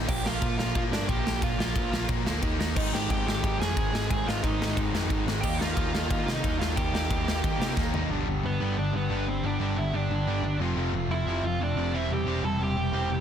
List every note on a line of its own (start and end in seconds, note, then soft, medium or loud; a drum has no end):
0.08 0.23 A#1 medium
0.08 0.25 A#2 loud
0.08 0.25 F3 loud
0.08 0.24 A#3 loud
0.08 0.25 G4 medium
0.08 0.27 G5 loud
0.08 kick loud
0.08 crash loud
0.24 0.39 A#1 medium
0.24 0.41 A#2 medium
0.24 0.41 F3 medium
0.24 0.42 A#3 medium
0.24 0.57 F4 medium
0.24 0.58 F5 loud
0.24 snare loud
0.42 0.71 A#1 loud
0.42 0.58 A#2 medium
0.42 0.58 F3 loud
0.42 0.58 A#3 loud
0.42 kick loud
0.42 ride medium
0.58 0.74 A#2 loud
0.58 0.74 F3 loud
0.58 0.75 A#3 loud
0.58 0.74 F4 medium
0.58 0.75 F5 medium
0.58 snare loud
0.75 0.91 A#2 medium
0.75 0.90 A#2 loud
0.75 0.91 F3 medium
0.75 0.90 A#3 loud
0.75 0.81 F4 medium
0.75 0.81 F5 medium
0.75 kick loud
0.75 ride medium
0.91 1.06 G2 medium
0.91 1.06 A#2 medium
0.91 1.07 F3 medium
0.91 1.07 A#3 loud
0.91 1.08 D4 medium
0.91 1.10 D5 medium
0.91 snare loud
1.07 1.23 A#1 medium
1.07 1.25 A#2 medium
1.07 1.25 F3 medium
1.07 1.24 A#3 medium
1.07 1.40 G4 medium
1.07 1.40 G5 loud
1.07 kick loud
1.07 ride medium
1.24 1.39 A#1 medium
1.24 1.41 A#2 medium
1.24 1.41 F3 medium
1.24 1.42 A#3 medium
1.24 snare loud
1.42 1.57 A#1 medium
1.42 1.59 A#2 loud
1.42 1.59 F3 loud
1.42 1.58 A#3 loud
1.42 2.06 F4 medium
1.42 2.06 F5 medium
1.42 kick loud
1.42 ride medium
1.58 1.73 A#1 medium
1.58 1.74 A#2 medium
1.58 1.74 F3 medium
1.58 1.75 A#3 loud
1.58 snare loud
1.75 2.05 A#1 loud
1.75 1.91 A#2 medium
1.75 1.91 F3 medium
1.75 1.90 A#3 loud
1.75 kick loud
1.75 ride medium
1.91 2.08 A#2 medium
1.91 2.08 F3 loud
1.91 2.08 A#3 loud
1.91 snare loud
2.09 2.24 A#2 loud
2.09 2.26 A#2 loud
2.09 2.25 F3 medium
2.09 2.25 A#3 loud
2.09 kick loud
2.09 ride medium
2.25 2.40 D2 medium
2.25 2.42 A#2 medium
2.25 2.42 F3 loud
2.25 2.42 A#3 loud
2.25 snare loud
2.42 2.57 D#2 medium
2.42 2.59 D#3 loud
2.42 2.59 A#3 loud
2.42 2.60 D#4 loud
2.42 kick loud
2.42 ride medium
2.58 2.73 D#2 medium
2.58 2.76 D#3 medium
2.58 2.76 A#3 medium
2.58 5.45 D#4 medium
2.58 snare loud
2.76 2.91 G#1 medium
2.76 4.08 G#2 medium
2.76 2.94 G#2 medium
2.76 4.09 D#3 medium
2.76 2.93 D#3 loud
2.76 4.09 G#3 medium
2.76 2.93 G#3 medium
2.76 4.10 C4 medium
2.76 4.12 D#4 loud
2.76 2.93 D#4 medium
2.76 2.94 D#5 medium
2.76 kick loud
2.76 crash loud
2.93 3.08 G#1 medium
2.93 3.09 G#2 medium
2.93 3.09 D#3 medium
2.93 3.10 G#3 loud
2.93 3.09 G4 medium
2.93 3.10 G5 loud
2.93 snare loud
3.10 3.39 G#1 medium
3.10 3.27 G#2 medium
3.10 3.26 D#3 loud
3.10 3.26 G#3 medium
3.10 3.27 G4 medium
3.10 3.27 G5 loud
3.10 kick loud
3.10 ride medium
3.27 3.42 G#2 medium
3.27 3.43 D#3 medium
3.27 3.43 G#3 loud
3.27 3.60 G4 medium
3.27 3.58 G5 loud
3.27 snare loud
3.44 3.60 G#2 medium
3.44 3.58 G#2 loud
3.44 3.60 D#3 medium
3.44 3.60 G#3 medium
3.44 kick loud
3.44 ride medium
3.60 3.74 F2 medium
3.60 3.76 G#2 medium
3.60 3.76 D#3 medium
3.60 3.77 G#3 loud
3.60 4.08 G#4 medium
3.60 4.07 G#5 loud
3.60 snare loud
3.77 3.91 G#1 medium
3.77 3.93 G#2 medium
3.77 3.93 D#3 medium
3.77 3.92 G#3 medium
3.77 kick loud
3.77 ride medium
3.93 4.08 G#1 medium
3.93 4.09 G#2 medium
3.93 4.10 D#3 medium
3.93 4.10 G#3 loud
3.93 snare loud
4.09 4.25 G#1 loud
4.09 5.42 G#2 medium
4.09 4.27 G#2 loud
4.09 5.42 D#3 loud
4.09 4.27 D#3 loud
4.09 5.43 G#3 loud
4.09 4.26 G#3 loud
4.09 5.43 C4 loud
4.09 5.45 D#4 loud
4.09 4.28 G#4 medium
4.09 4.28 G#5 loud
4.09 kick loud
4.09 ride medium
4.26 4.41 G#1 medium
4.26 4.43 G#2 medium
4.26 4.44 D#3 medium
4.26 4.44 G#3 loud
4.26 4.44 F4 medium
4.26 4.43 F5 loud
4.26 snare loud
4.43 4.73 G#1 loud
4.43 4.60 G#2 loud
4.43 4.60 D#3 medium
4.43 4.60 G#3 loud
4.43 5.24 D#4 medium
4.43 5.27 D#5 loud
4.43 kick loud
4.43 ride medium
4.61 4.76 G#2 medium
4.61 4.77 D#3 loud
4.61 4.77 G#3 loud
4.61 snare loud
4.77 4.92 G#2 loud
4.77 4.94 G#2 medium
4.77 4.93 D#3 medium
4.77 4.93 G#3 medium
4.77 kick loud
4.77 ride medium
4.93 5.08 F2 medium
4.93 5.10 G#2 medium
4.93 5.10 D#3 loud
4.93 5.11 G#3 loud
4.93 snare loud
5.10 5.25 G#1 medium
5.10 5.27 G#2 medium
5.10 5.27 D#3 medium
5.10 5.26 G#3 medium
5.10 kick loud
5.10 ride medium
5.26 5.41 G#1 medium
5.26 5.43 G#2 medium
5.26 5.43 D#3 medium
5.26 5.43 G#3 medium
5.26 snare loud
5.41 5.58 D#2 loud
5.41 6.75 D#3 loud
5.41 5.62 D#3 loud
5.41 6.77 G3 loud
5.41 6.76 A#3 loud
5.41 5.59 G4 medium
5.41 5.60 G5 medium
5.41 kick loud
5.41 crash loud
5.45 5.61 A#3 loud
5.45 6.77 D#4 loud
5.45 5.61 D#4 loud
5.58 5.75 D#2 medium
5.58 5.77 D#3 medium
5.58 5.78 A#3 medium
5.58 5.78 D#4 medium
5.58 5.92 F4 medium
5.58 5.90 F5 loud
5.58 snare loud
5.76 6.06 D#2 loud
5.76 5.95 D#3 medium
5.76 5.94 A#3 loud
5.76 5.94 D#4 loud
5.76 kick loud
5.76 ride medium
5.93 6.10 D#3 medium
5.93 6.11 A#3 loud
5.93 6.11 D#4 loud
5.93 6.33 F4 medium
5.93 6.32 F5 loud
5.93 snare loud
6.10 6.25 D#3 medium
6.10 6.28 D#3 medium
6.10 6.28 A#3 medium
6.10 6.28 D#4 loud
6.10 kick loud
6.10 ride medium
6.26 6.41 C3 loud
6.26 6.43 D#3 medium
6.26 6.44 A#3 loud
6.26 6.44 D#4 loud
6.26 snare loud
6.34 6.59 D#4 medium
6.34 6.58 D#5 loud
6.44 6.58 D#2 medium
6.44 6.61 D#3 medium
6.44 6.60 A#3 loud
6.44 6.60 D#4 medium
6.44 kick loud
6.44 ride medium
6.59 6.75 D#2 medium
6.59 6.76 D#3 medium
6.59 6.77 A#3 medium
6.59 6.77 D#4 medium
6.59 6.76 F4 medium
6.59 6.77 F5 loud
6.59 snare loud
6.76 6.92 D#2 medium
6.76 8.09 D#3 loud
6.76 6.94 D#3 loud
6.76 8.09 G3 loud
6.76 8.10 A#3 medium
6.76 6.93 A#3 loud
6.76 6.93 D#4 loud
6.76 8.10 D#4 loud
6.76 7.73 G4 medium
6.76 7.73 G5 medium
6.76 kick loud
6.76 ride medium
6.93 7.08 D#2 loud
6.93 7.10 D#3 medium
6.93 7.10 A#3 loud
6.93 7.10 D#4 loud
6.93 snare loud
7.10 7.39 D#2 loud
7.10 7.27 D#3 loud
7.10 7.27 A#3 medium
7.10 7.27 D#4 loud
7.10 kick loud
7.10 ride medium
7.28 7.43 D#3 medium
7.28 7.43 A#3 loud
7.28 7.44 D#4 loud
7.28 snare loud
7.44 7.58 D#3 loud
7.44 7.60 D#3 medium
7.44 7.60 A#3 medium
7.44 7.60 D#4 medium
7.44 kick loud
7.44 ride medium
7.59 7.74 C3 medium
7.59 7.76 D#3 medium
7.59 7.77 A#3 loud
7.59 7.77 D#4 loud
7.59 snare loud
7.76 7.91 D#2 medium
7.76 7.94 D#3 medium
7.76 7.94 A#3 medium
7.76 7.93 D#4 loud
7.76 kick loud
7.76 snare medium
7.92 8.07 D#2 medium
7.92 8.10 D#3 medium
7.92 8.10 A#3 medium
7.92 8.10 D#4 medium
7.92 floor tom loud
8.09 8.25 G1 medium
8.09 8.26 G2 medium
8.09 8.27 D3 medium
8.09 8.59 G3 medium
8.09 8.27 G3 loud
8.09 8.60 B3 medium
8.09 8.60 D4 loud
8.13 8.59 G4 medium
8.26 8.42 G1 medium
8.26 8.42 G2 medium
8.26 8.42 D3 medium
8.43 8.59 G1 loud
8.43 8.58 G2 medium
8.43 8.59 D3 medium
8.43 8.76 B3 medium
8.43 8.76 B4 medium
8.60 8.76 G1 medium
8.60 8.76 G2 medium
8.60 8.76 D3 loud
8.60 8.76 G3 medium
8.60 9.42 G3 medium
8.60 9.43 B3 medium
8.60 9.43 D4 medium
8.60 9.43 G4 loud
8.77 8.92 G1 medium
8.77 8.92 G2 medium
8.77 8.92 D3 medium
8.77 8.93 D4 medium
8.77 8.94 D5 loud
8.93 9.09 G1 medium
8.93 9.08 G2 medium
8.93 9.09 D3 medium
8.93 9.26 B3 medium
8.93 9.29 B4 medium
9.09 9.41 G1 medium
9.09 9.25 G2 medium
9.09 9.26 D3 medium
9.09 9.26 G3 loud
9.28 9.42 G2 medium
9.28 9.42 D3 medium
9.28 9.43 C4 medium
9.28 9.46 C5 medium
9.43 9.59 G1 medium
9.43 9.59 G2 medium
9.43 9.59 D3 medium
9.43 9.92 G3 medium
9.43 9.93 B3 medium
9.43 9.93 D4 medium
9.43 9.75 D4 medium
9.43 9.92 G4 medium
9.43 9.79 D5 medium
9.60 9.75 G1 medium
9.60 9.76 G2 medium
9.60 9.76 D3 loud
9.60 9.76 G3 medium
9.76 9.92 G1 loud
9.76 9.92 G2 medium
9.76 9.93 D3 medium
9.76 9.93 E4 medium
9.76 9.94 E5 loud
9.93 10.09 G1 medium
9.93 10.09 G2 medium
9.93 10.09 D3 medium
9.93 10.59 G3 medium
9.93 10.60 B3 medium
9.93 10.57 D4 medium
9.93 10.60 D4 medium
9.93 10.59 G4 loud
9.93 10.58 D5 medium
10.10 10.25 G1 medium
10.10 10.26 G2 medium
10.10 10.26 D3 medium
10.27 10.42 G1 medium
10.27 10.43 G2 medium
10.27 10.43 D3 medium
10.27 10.44 G3 loud
10.43 10.59 G1 medium
10.43 10.59 G2 medium
10.43 10.59 D3 medium
10.59 10.75 F1 medium
10.59 10.75 F2 medium
10.59 10.76 C3 medium
10.59 11.08 F3 medium
10.59 10.77 F3 loud
10.59 11.09 A3 loud
10.59 11.11 C4 loud
10.59 11.10 F4 loud
10.76 10.91 F1 medium
10.76 10.93 F2 medium
10.76 10.93 C3 medium
10.76 10.93 F3 loud
10.92 11.08 F1 medium
10.92 11.09 F2 medium
10.92 11.09 C3 medium
11.08 11.25 F1 medium
11.08 11.26 F2 medium
11.08 11.26 C3 medium
11.08 11.92 F3 medium
11.08 11.93 A3 medium
11.08 11.93 C4 medium
11.08 11.42 E4 medium
11.08 11.93 F4 loud
11.14 11.43 E5 medium
11.26 11.42 F1 medium
11.26 11.43 F2 medium
11.26 11.43 C3 medium
11.26 11.44 F3 loud
11.43 11.59 F1 medium
11.43 11.59 F2 medium
11.43 11.59 C3 medium
11.43 11.60 F4 medium
11.47 11.63 F5 loud
11.60 11.75 F1 medium
11.60 11.76 F2 medium
11.60 11.76 C3 medium
11.60 11.92 D4 medium
11.60 11.96 D5 medium
11.76 11.93 F1 medium
11.76 11.93 F2 medium
11.76 11.93 C3 medium
11.76 11.93 F3 loud
11.93 12.09 E1 medium
11.93 12.09 C3 medium
11.93 12.42 E3 medium
11.93 12.10 G3 medium
11.93 12.44 G3 medium
11.93 12.10 C4 medium
11.93 12.43 C4 medium
11.93 12.10 E4 medium
11.93 12.44 E4 medium
11.93 12.13 E5 medium
12.10 12.25 E1 medium
12.10 12.26 C3 medium
12.10 12.26 G3 medium
12.10 12.42 G4 medium
12.10 12.46 G5 medium
12.26 12.42 E1 medium
12.26 12.42 C3 medium
12.26 12.42 G3 medium
12.26 12.43 C4 medium
12.42 12.58 E1 medium
12.42 12.58 C3 medium
12.42 13.20 E3 medium
12.42 12.59 G3 medium
12.42 13.20 G3 medium
12.42 13.20 C4 loud
12.42 13.20 E4 medium
12.42 12.60 A4 medium
12.42 12.62 A5 loud
12.59 12.75 E1 medium
12.59 12.75 C3 medium
12.59 12.76 G3 medium
12.59 13.20 G4 medium
12.59 13.20 G5 medium
12.76 12.92 E1 medium
12.76 12.92 C3 medium
12.76 12.92 G3 medium
12.93 13.08 E1 medium
12.93 13.09 C3 medium
12.93 13.09 G3 medium
12.93 13.10 C4 medium
13.09 13.20 E1 medium
13.09 13.20 C3 medium
13.09 13.20 G3 medium